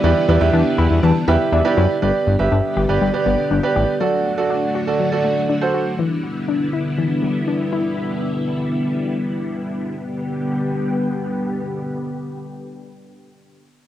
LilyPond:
<<
  \new Staff \with { instrumentName = "Grand piano" } { \time 4/4 \key g \major \tempo 4 = 121 << { r4. b''8 a''8 g''8 e''4 | r1 | r1 | r1 |
r1 | r1 | r1 | } \\ { <e' g' b' d''>8 <e' g' b' d''>16 <e' g' b' e''>4. r16 <e' g' b' e''>8 r16 <e' g' b' d''>8 r16 | <g' b' d''>8 r16 <g' b' e''>8. r16 <g' b' d''>8 <g' b' d''>8. r16 <g' b' d''>8 r16 | <fis' a' d''>8 r16 <fis' a' d''>8. r16 <fis' a' d''>8 <fis' a' d''>8. r16 <fis' a' c''>8 r16 | r1 |
r1 | r1 | r1 | } >> }
  \new Staff \with { instrumentName = "Synth pluck" } { \time 4/4 \key g \major e8 g8 d'8 e'8 e8 g8 d'8 e'8 | g8 r8 d'8 g'8 g8 b8 d'8 g'8 | fis8 r8 d'8 fis'8 fis8 a8 d'8 fis'8 | e8 r8 d'8 e'8 e8 g8 d'8 e'8 |
r1 | r1 | r1 | }
  \new Staff \with { instrumentName = "String machine" } { \time 4/4 \key g \major << { <g b d'>1 | <g b g'>1 | <fis a fis'>1 | <g b e'>1~ |
<g b e'>1 | <d g b g'>1~ | <d g b g'>1 | } \\ { d1 | d1~ | d1~ | d1~ |
d1 | r1 | r1 | } >> }
  \new Staff \with { instrumentName = "Analog synth bass" } { \clef bass \time 4/4 \key g \major e,16 r16 e,16 e,16 e,16 r16 e,16 e,16 e,16 r16 e,16 r16 e,16 r16 fis,16 r16 | g,,16 r16 g,,16 g,,16 g,,16 r16 g,,16 g,,16 g,,16 r16 g,,16 r16 g,,16 r16 a,,16 r16 | r1 | r1 |
r1 | r1 | r1 | }
>>